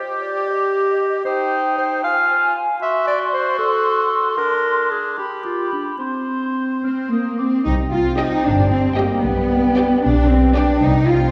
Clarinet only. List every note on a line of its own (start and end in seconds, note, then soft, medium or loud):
0.00 1.21 G4 medium
1.25 1.76 C5 medium
1.78 2.03 C5 medium
2.04 2.53 F5 medium
2.82 3.06 E5 medium
3.07 3.19 D5 medium
3.33 3.58 C5 medium
3.58 4.36 A4 medium
4.38 4.93 A#4 medium
4.91 5.17 G#4 medium
5.18 5.44 G4 medium
5.45 5.71 F4 medium
5.73 5.98 D4 soft
5.99 7.35 C4 soft
7.65 9.20 C5 soft
9.23 10.01 B4 soft
10.04 10.81 B4 soft
10.82 11.31 C5 soft